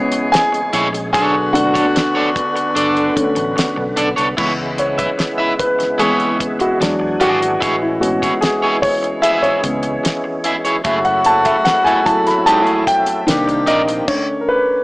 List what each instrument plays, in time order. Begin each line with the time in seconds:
Already playing: grand piano C#3 G#3 B3 C#4 E4 F#4 C#5 E5 F5 F#5, horn section E3 C#4 G#4, tonewheel organ G#3 C#4
0.12 muted clean electric guitar stroke, closed hi-hat
0.32 grand piano G#4 G#5, muted clean electric guitar stroke, snare, closed hi-hat
0.52 muted clean electric guitar stroke, closed hi-hat
0.73 fingered electric bass A#1, clean electric guitar E4 G#4 C#5, closed hi-hat
0.93 muted clean electric guitar stroke, closed hi-hat
1.13 fingered electric bass B1, horn section D3 D4 F#4, tonewheel organ D3 B3, clean electric guitar D4 A4 C#5, grand piano G#4 G#5, kick, closed hi-hat
1.53 grand piano D3 A3 D4 F#4 F#5, muted clean electric guitar stroke, closed hi-hat
1.74 clean electric guitar D4 A4 C#5, kick, closed hi-hat
1.95 muted clean electric guitar stroke, snare, closed hi-hat
2.15 clean electric guitar D4 A4 C#5
2.35 muted clean electric guitar stroke, kick, closed hi-hat
2.56 muted clean electric guitar stroke, closed hi-hat
2.75 fingered electric bass F#1, clean electric guitar D4 A4 D5, closed hi-hat
2.97 closed hi-hat
3.16 grand piano D3 A3 C#4, muted clean electric guitar stroke, muted fingered electric bass stroke, kick, closed hi-hat
3.35 fingered electric bass A1, muted clean electric guitar stroke, closed hi-hat
3.56 muted clean electric guitar stroke, snare, closed hi-hat
3.76 fingered electric bass B1, muted clean electric guitar stroke
3.96 fingered electric bass B1, clean electric guitar D4 A4 D5, closed hi-hat
4.16 fingered electric bass C2, clean electric guitar D4 A4 C#5, closed hi-hat
4.37 fingered electric bass C#2, tonewheel organ C#3 G#3 B3 E4, grand piano E3 G#3 B3, clean electric guitar E4 B4 C#5, kick, crash
4.78 grand piano C#5, muted clean electric guitar stroke, closed hi-hat
4.98 clean electric guitar E4 B4 E5, kick, closed hi-hat
5.18 muted clean electric guitar stroke, snare, closed hi-hat
5.38 clean electric guitar E4 B4 E5
5.59 grand piano B4, muted clean electric guitar stroke, kick, closed hi-hat
5.79 muted clean electric guitar stroke, snare, closed hi-hat
5.98 grand piano E3 G#3 B3 G#4, clean electric guitar E4 B4 C#5, closed hi-hat
6.20 closed hi-hat
6.39 muted clean electric guitar stroke, kick, closed hi-hat
6.60 grand piano F#4, muted clean electric guitar stroke, closed hi-hat
6.80 fingered electric bass E2, tonewheel organ E3 D4 F#4 G#4, grand piano F#3 G#3 D4, muted clean electric guitar stroke, snare, closed hi-hat
7.00 muted clean electric guitar stroke
7.20 fingered electric bass G#1, clean electric guitar F#4 G#4 D5, grand piano F#4, closed hi-hat
7.41 muted clean electric guitar stroke, closed hi-hat
7.60 fingered electric bass A1, tonewheel organ E3 G#3 C#4, clean electric guitar E4 G#4 C#5, kick, closed hi-hat
7.82 grand piano E4
8.00 grand piano G#3 B3 C#4 F#4, muted clean electric guitar stroke, closed hi-hat
8.22 clean electric guitar E4 G#4 C#5, kick, closed hi-hat
8.41 grand piano G#4, muted clean electric guitar stroke, snare, closed hi-hat
8.62 clean electric guitar E4 G#4 C#5
8.82 grand piano C#5, muted clean electric guitar stroke, kick, open hi-hat
9.03 muted clean electric guitar stroke, closed hi-hat
9.22 clean electric guitar E4 G#4 E5, grand piano E5, closed hi-hat
9.43 grand piano C#5, closed hi-hat
9.63 fingered electric bass C#2, grand piano G#3 B3 C#4, muted clean electric guitar stroke, kick, closed hi-hat
9.83 muted clean electric guitar stroke, closed hi-hat
10.04 muted clean electric guitar stroke, snare, closed hi-hat
10.24 muted clean electric guitar stroke
10.44 clean electric guitar E4 G#4 E5, closed hi-hat
10.65 clean electric guitar E4 G#4 C#5, closed hi-hat
10.84 fingered electric bass F#1, horn section C#3 A3 F#4, tonewheel organ F#3 A3 E4, clean electric guitar A3 E4 G#4, grand piano E5, kick, closed hi-hat
11.05 grand piano F#5, closed hi-hat
11.24 grand piano A5, muted clean electric guitar stroke, closed hi-hat
11.45 clean electric guitar A3 E4 A4, grand piano E5, kick, closed hi-hat
11.65 grand piano F#5, muted clean electric guitar stroke, snare, closed hi-hat
11.84 clean electric guitar A3 E4 A4, grand piano G#5, closed hi-hat
12.05 grand piano F#3 A3 E4 A5, muted clean electric guitar stroke, kick, closed hi-hat
12.27 grand piano B5, muted clean electric guitar stroke, snare, closed hi-hat
12.46 clean electric guitar G#3 D#4 G4, grand piano A5, closed hi-hat
12.61 clean electric guitar A3 E4 G#4
12.67 closed hi-hat
12.87 grand piano G5, muted clean electric guitar stroke, kick, closed hi-hat
13.06 muted clean electric guitar stroke, closed hi-hat
13.26 fingered electric bass C2, tonewheel organ C3 D#3 A#3 C4, grand piano D#3 A#3 D4, horn section D#3 D4 G4, muted clean electric guitar stroke, snare, closed hi-hat
13.48 muted clean electric guitar stroke, closed hi-hat
13.66 fingered electric bass A#1, clean electric guitar D#4 A#4 D5, grand piano D#5, closed hi-hat
13.88 muted clean electric guitar stroke, closed hi-hat
14.08 grand piano D3 A3 C#4 C#5, kick, crash
14.41 grand piano A#4
14.49 grand piano B4